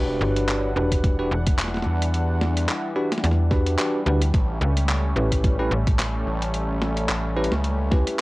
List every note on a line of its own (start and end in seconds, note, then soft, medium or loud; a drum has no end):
0.00 0.19 E1 loud
0.00 4.30 E3 medium
0.00 8.21 G3 medium
0.00 0.71 D4 loud
0.00 4.29 D4 medium
0.00 0.71 F#4 medium
0.00 0.71 G4 medium
0.00 0.71 B4 loud
0.00 4.29 F#5 medium
0.21 0.74 G1 loud
0.36 closed hi-hat medium
0.49 clap loud
0.49 closed hi-hat medium
0.76 1.29 E1 loud
0.76 1.15 D4 medium
0.76 1.15 F#4 medium
0.76 1.15 G4 medium
0.76 1.15 B4 medium
0.92 kick medium
0.92 closed hi-hat medium
1.04 kick loud
1.04 closed hi-hat medium
1.19 1.30 D4 loud
1.19 1.30 F#4 medium
1.19 1.30 G4 medium
1.19 1.30 B4 loud
1.31 1.84 E1 loud
1.47 kick loud
1.47 closed hi-hat medium
1.59 clap loud
1.59 snare soft
1.59 closed hi-hat medium
1.64 snare soft
1.68 snare soft
1.74 snare soft
1.77 snare soft
1.82 2.67 E2 loud
1.82 snare soft
2.02 closed hi-hat medium
2.14 closed hi-hat medium
2.41 snare medium
2.57 closed hi-hat medium
2.69 clap loud
2.69 closed hi-hat medium
2.96 3.10 D4 loud
2.96 3.10 F#4 medium
2.96 3.10 G4 medium
2.96 3.10 B4 loud
3.12 snare medium
3.12 closed hi-hat medium
3.18 snare soft
3.24 3.77 E2 medium
3.24 snare soft
3.24 closed hi-hat medium
3.31 snare soft
3.51 3.76 D4 medium
3.51 3.76 F#4 medium
3.51 3.76 G4 medium
3.51 3.76 B4 loud
3.51 kick loud
3.51 snare soft
3.67 closed hi-hat medium
3.79 3.99 D4 medium
3.79 3.99 F#4 medium
3.79 3.99 G4 medium
3.79 3.99 B4 loud
3.79 clap loud
3.79 closed hi-hat medium
4.06 4.32 D2 loud
4.06 4.20 D4 medium
4.06 4.20 F#4 medium
4.06 4.20 G4 medium
4.06 4.20 B4 medium
4.21 closed hi-hat medium
4.34 4.59 A1 loud
4.34 8.21 A3 medium
4.34 8.21 C#4 medium
4.34 kick loud
4.34 closed hi-hat medium
4.61 5.14 C#2 loud
4.77 closed hi-hat medium
4.89 clap loud
4.89 closed hi-hat medium
5.16 5.69 A1 loud
5.16 5.56 C#4 medium
5.16 5.56 E4 medium
5.16 5.56 G4 medium
5.16 5.55 B4 medium
5.32 kick medium
5.32 closed hi-hat medium
5.44 kick loud
5.44 closed hi-hat medium
5.59 5.70 C#4 medium
5.59 5.70 E4 medium
5.59 5.70 G4 medium
5.59 5.70 B4 loud
5.71 6.24 A1 loud
5.87 kick loud
5.87 closed hi-hat medium
5.99 clap loud
5.99 snare soft
5.99 closed hi-hat medium
6.26 7.07 A1 loud
6.42 closed hi-hat medium
6.54 closed hi-hat medium
6.82 snare medium
6.97 closed hi-hat medium
7.09 7.50 A1 medium
7.09 clap loud
7.09 closed hi-hat medium
7.37 7.50 C#4 medium
7.37 7.50 E4 medium
7.37 7.51 G4 medium
7.37 7.50 B4 loud
7.44 closed hi-hat medium
7.52 8.05 C#2 medium
7.52 snare medium
7.64 closed hi-hat medium
7.91 8.16 C#4 medium
7.91 8.16 E4 medium
7.91 8.16 G4 medium
7.91 8.16 B4 loud
7.91 kick loud
7.91 snare soft
8.07 closed hi-hat medium